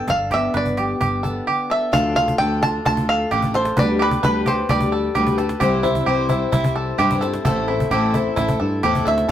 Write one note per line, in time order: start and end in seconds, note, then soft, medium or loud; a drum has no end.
0.07 0.47 G1 medium
0.07 0.50 G2 medium
0.07 1.00 D4 medium
0.07 0.31 A4 medium
0.07 0.33 F5 medium
0.07 cajon bass medium
0.31 1.25 B3 medium
0.31 0.54 G4 medium
0.31 0.56 E5 medium
0.31 cajon bass medium
0.31 cajon slap medium
0.54 0.93 G1 medium
0.54 0.96 D3 medium
0.54 0.77 B4 medium
0.54 1.44 D5 medium
0.54 cajon slap medium
0.65 cajon bass medium
0.77 0.99 G4 medium
0.77 1.91 G4 medium
0.77 cajon slap medium
1.00 1.40 G1 medium
1.00 1.42 G2 medium
1.00 1.90 D4 soft
1.00 1.23 G4 medium
1.00 cajon bass medium
1.23 1.91 B3 soft
1.23 1.46 A4 medium
1.23 cajon bass medium
1.47 1.89 D3 medium
1.47 1.70 G4 medium
1.70 1.92 A4 medium
1.70 1.94 E5 medium
1.92 2.32 D2 loud
1.92 3.74 D2 medium
1.92 2.15 D3 medium
1.92 3.73 D3 medium
1.92 3.73 F3 medium
1.92 2.16 A3 medium
1.92 3.74 A3 soft
1.92 2.16 D4 medium
1.92 3.74 D4 medium
1.92 2.16 F4 medium
1.92 2.16 A4 medium
1.92 2.14 A4 medium
1.92 3.75 A4 medium
1.92 2.15 F5 medium
1.92 cajon bass loud
2.15 2.38 D4 soft
2.15 2.39 F4 medium
2.15 2.39 F4 soft
2.15 2.39 A4 medium
2.15 2.38 F5 medium
2.15 cajon bass medium
2.28 cajon bass medium
2.38 2.78 D2 medium
2.38 2.62 D3 medium
2.38 2.62 A3 medium
2.38 2.62 D4 medium
2.38 2.61 F4 medium
2.38 2.62 A4 medium
2.38 2.60 A4 medium
2.38 2.62 G5 medium
2.61 2.85 D4 soft
2.61 2.85 F4 soft
2.61 2.84 F4 medium
2.61 2.84 A4 soft
2.61 2.85 A5 medium
2.61 cajon bass medium
2.85 3.24 D2 medium
2.85 3.31 A3 medium
2.85 3.31 D4 medium
2.85 3.08 F4 medium
2.85 3.32 F4 medium
2.85 3.32 A4 medium
2.85 3.09 A5 loud
2.85 cajon bass loud
2.97 cajon bass medium
3.09 3.31 A4 medium
3.09 3.56 F5 medium
3.31 3.70 A1 medium
3.31 3.54 D3 medium
3.31 3.55 A3 medium
3.31 3.55 D4 medium
3.31 3.55 F4 medium
3.31 3.54 G4 medium
3.31 3.54 A4 medium
3.31 cajon slap medium
3.42 cajon bass medium
3.54 3.79 F4 soft
3.54 3.76 A4 medium
3.54 3.78 A4 soft
3.54 3.78 C5 medium
3.54 cajon slap medium
3.59 3.78 D4 soft
3.65 cajon slap medium
3.76 5.57 D2 medium
3.76 4.16 D2 loud
3.76 5.57 D3 medium
3.76 4.01 D3 medium
3.76 5.57 G3 medium
3.76 4.01 G3 medium
3.76 5.57 B3 medium
3.76 5.58 D4 medium
3.76 4.01 D4 medium
3.76 3.99 B4 medium
3.76 5.58 B4 medium
3.76 4.02 D5 medium
3.76 cajon bass medium
3.76 cajon bass loud
3.80 4.02 G4 medium
3.80 4.00 B4 medium
3.99 4.22 G4 medium
3.99 4.24 B4 medium
3.99 4.23 B4 medium
4.03 4.23 D4 soft
4.03 4.24 G4 soft
4.11 cajon bass medium
4.23 4.62 D2 medium
4.23 4.46 D3 medium
4.23 4.46 G3 medium
4.23 4.47 D4 medium
4.23 4.47 G4 medium
4.23 4.46 B4 medium
4.23 4.47 B4 medium
4.23 4.46 B4 medium
4.23 cajon bass medium
4.23 cajon slap medium
4.46 4.68 G4 medium
4.46 4.70 G4 soft
4.46 4.69 B4 medium
4.46 4.68 C5 medium
4.46 cajon bass medium
4.50 4.70 D4 soft
4.69 5.08 D2 medium
4.69 5.14 G3 medium
4.69 5.15 D4 medium
4.69 4.92 G4 medium
4.69 5.15 G4 medium
4.69 5.16 B4 medium
4.69 5.35 D5 medium
4.69 cajon bass loud
4.69 cajon slap medium
4.81 cajon bass medium
4.92 5.15 A4 medium
5.14 5.54 D2 medium
5.14 5.38 D3 medium
5.14 5.38 G3 medium
5.14 5.38 D4 medium
5.14 5.38 G4 medium
5.14 5.35 B4 medium
5.14 cajon slap medium
5.27 cajon bass medium
5.37 5.61 D4 soft
5.37 5.61 G4 soft
5.37 5.60 A4 medium
5.37 5.60 B4 medium
5.37 cajon slap medium
5.49 cajon slap medium
5.59 7.40 C2 medium
5.59 6.00 C2 loud
5.59 5.83 C3 medium
5.59 7.41 C3 medium
5.59 5.84 E3 medium
5.59 7.40 G3 medium
5.59 5.84 G3 medium
5.59 7.41 C4 medium
5.59 5.84 C4 medium
5.59 7.41 E4 medium
5.59 5.83 E4 medium
5.59 5.83 G4 medium
5.59 7.41 C5 medium
5.59 5.81 C5 medium
5.59 cajon bass loud
5.83 6.06 G3 soft
5.83 6.07 C4 medium
5.83 6.06 E4 medium
5.83 6.07 E4 medium
5.83 6.06 C5 medium
5.83 cajon bass medium
5.95 cajon bass medium
6.06 6.46 C2 medium
6.06 6.30 C3 medium
6.06 6.30 E3 medium
6.06 6.30 G3 medium
6.06 6.30 C4 medium
6.06 6.30 E4 medium
6.06 6.29 G4 medium
6.06 6.27 C5 medium
6.29 6.52 C4 medium
6.29 6.51 E4 medium
6.29 6.53 E4 medium
6.29 6.52 C5 medium
6.29 cajon bass medium
6.33 6.50 G3 soft
6.52 6.91 C2 medium
6.52 6.98 G3 medium
6.52 6.98 C4 medium
6.52 6.75 E4 medium
6.52 6.99 E4 medium
6.52 6.99 C5 medium
6.52 cajon bass loud
6.64 cajon bass medium
6.76 6.98 A4 medium
6.98 7.38 G2 medium
6.98 7.21 C3 medium
6.98 7.22 E3 medium
6.98 7.22 G3 loud
6.98 7.22 C4 medium
6.98 7.20 E4 loud
6.98 7.21 G4 medium
6.98 7.19 C5 medium
6.98 cajon slap medium
7.11 cajon bass medium
7.21 7.46 G3 soft
7.21 7.45 C4 soft
7.21 7.45 E4 medium
7.21 7.44 A4 medium
7.21 7.44 C5 medium
7.21 cajon slap medium
7.34 cajon slap medium
7.43 9.24 A1 medium
7.43 7.84 A1 loud
7.43 9.24 A2 medium
7.43 7.68 A2 medium
7.43 7.68 E3 medium
7.43 9.24 A3 medium
7.43 7.68 A3 medium
7.43 9.24 C4 medium
7.43 7.68 C4 loud
7.43 9.25 E4 medium
7.43 7.67 E4 medium
7.43 7.67 A4 medium
7.43 9.25 C5 medium
7.43 cajon bass loud
7.47 7.66 A4 loud
7.68 7.91 A3 soft
7.68 7.91 C4 medium
7.68 7.90 E4 medium
7.68 7.91 E4 medium
7.68 7.91 A4 medium
7.80 cajon bass medium
7.91 8.30 A1 medium
7.91 8.14 A2 medium
7.91 8.14 E3 medium
7.91 8.14 A3 medium
7.91 8.14 C4 medium
7.91 8.14 E4 medium
7.91 8.13 G4 medium
7.91 8.13 A4 medium
7.91 cajon bass medium
7.91 cajon slap medium
8.14 8.37 A3 soft
8.14 8.38 C4 medium
8.14 8.35 E4 medium
8.14 8.37 E4 medium
8.14 8.37 A4 medium
8.14 cajon bass medium
8.36 8.56 A1 medium
8.36 8.83 A3 medium
8.36 8.83 C4 medium
8.36 8.59 E4 medium
8.36 cajon bass loud
8.36 cajon slap medium
8.41 8.84 E4 medium
8.41 8.84 A4 medium
8.48 cajon bass medium
8.60 8.81 G2 medium
8.60 8.82 A4 medium
8.83 9.04 E2 medium
8.83 9.06 A2 medium
8.83 9.06 E3 medium
8.83 9.06 A3 medium
8.83 9.06 C4 medium
8.83 9.07 E4 medium
8.83 9.05 G4 medium
8.83 9.05 A4 medium
8.83 cajon slap medium
8.95 cajon bass medium
9.05 9.27 D2 medium
9.05 9.29 A3 soft
9.05 9.30 C4 soft
9.05 9.30 E4 soft
9.05 9.27 A4 medium
9.05 9.29 A4 soft
9.05 9.28 E5 medium
9.05 cajon slap medium
9.18 cajon slap medium
9.27 9.31 D2 medium
9.27 9.31 D3 medium
9.27 9.31 A3 medium
9.27 9.31 D4 medium
9.27 9.31 F4 medium